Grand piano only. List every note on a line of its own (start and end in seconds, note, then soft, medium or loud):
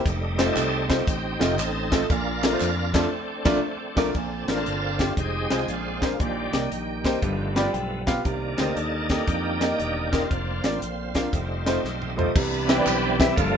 0.37 0.44 A3 medium
0.37 0.44 D#4 medium
0.37 0.44 F4 medium
0.37 0.44 C5 medium
0.46 0.60 A3 medium
0.46 0.60 D#4 medium
0.46 0.60 F4 medium
0.46 0.61 D#5 medium
0.88 1.00 A3 medium
0.88 1.01 D#4 medium
0.88 1.01 F4 medium
0.88 1.01 C5 medium
1.39 1.52 A3 medium
1.39 1.52 D#4 medium
1.39 1.52 F4 medium
1.39 1.52 D#5 medium
1.90 2.03 A3 medium
1.90 2.03 D#4 medium
1.90 2.03 F4 medium
1.90 2.04 A4 medium
2.10 2.90 A#2 medium
2.43 2.49 A3 medium
2.43 2.49 D4 medium
2.43 2.49 F4 medium
2.43 2.49 A#4 medium
2.51 2.65 A3 medium
2.51 2.65 D4 medium
2.51 2.66 F4 medium
2.51 2.66 C5 medium
2.93 3.05 A3 medium
2.93 3.05 D4 medium
2.93 3.06 F4 medium
2.93 3.06 A4 medium
3.45 3.57 A3 loud
3.45 3.57 D4 loud
3.45 3.58 F4 loud
3.96 4.09 A3 medium
3.96 4.09 D4 medium
3.96 4.09 F4 medium
3.96 4.09 A#4 loud
4.15 4.95 A#2 medium
4.47 4.59 A3 medium
4.47 4.60 D4 medium
4.47 4.60 F4 medium
4.47 4.60 A#4 medium
4.99 5.10 A3 medium
4.99 5.10 D4 medium
4.99 5.11 F4 medium
4.99 5.11 G4 medium
5.50 5.62 G#3 medium
5.50 5.62 D#4 medium
5.50 5.62 F4 medium
5.50 5.62 C5 medium
5.69 6.17 A#2 medium
6.02 6.13 A#3 medium
6.02 6.13 D4 medium
6.02 6.14 G#4 medium
6.02 6.14 C5 medium
6.20 7.01 A#2 medium
6.52 6.64 A#3 medium
6.52 6.65 D#4 medium
6.52 6.65 G4 medium
6.52 6.65 D5 medium
7.04 7.16 A#3 medium
7.04 7.16 D#4 medium
7.04 7.16 G4 medium
7.04 7.16 C5 medium
7.23 8.03 G2 medium
7.55 7.67 B3 medium
7.55 7.67 F4 medium
7.55 7.67 G4 medium
7.55 7.68 D5 medium
7.55 7.73 B5 medium
7.73 8.05 G5 medium
8.06 8.18 B3 medium
8.06 8.19 F4 medium
8.06 8.19 G4 medium
8.06 8.19 F5 medium
8.25 9.06 C3 medium
8.58 8.70 A#3 medium
8.58 8.70 D#4 medium
8.58 8.70 G4 medium
8.58 8.71 C5 medium
9.10 9.21 A#3 medium
9.10 9.22 D#4 medium
9.10 9.22 G4 medium
9.10 9.22 A4 medium
9.61 9.73 A#3 medium
9.61 9.73 D#4 medium
9.61 9.73 G4 medium
9.61 9.73 D#5 medium
10.12 10.24 A#3 medium
10.12 10.24 D#4 medium
10.12 10.24 G4 medium
10.12 10.24 A#4 medium
10.64 10.75 A#3 medium
10.64 10.75 D4 medium
10.64 10.76 F4 medium
10.64 10.76 D5 medium
11.14 11.26 A#3 medium
11.14 11.26 D4 medium
11.14 11.27 F4 medium
11.14 11.27 F5 medium
11.66 11.78 A3 medium
11.66 11.78 D#4 medium
11.66 11.78 F4 medium
11.66 11.78 C5 medium
12.17 12.29 A3 medium
12.17 12.29 D#4 medium
12.17 12.29 F4 medium
12.17 12.29 C5 medium
12.36 13.16 C3 medium
12.68 12.74 C4 medium
12.68 12.74 E4 medium
12.68 12.75 G4 medium
12.68 12.75 B4 medium
12.68 12.75 E5 medium
12.77 12.91 C4 medium
12.77 12.91 E4 medium
12.77 12.91 G4 medium
12.77 12.91 B4 medium
12.77 12.92 D5 medium
13.19 13.31 C4 medium
13.19 13.31 E4 medium
13.19 13.31 G4 medium
13.19 13.31 B4 medium
13.19 13.32 E5 medium
13.38 13.57 G2 medium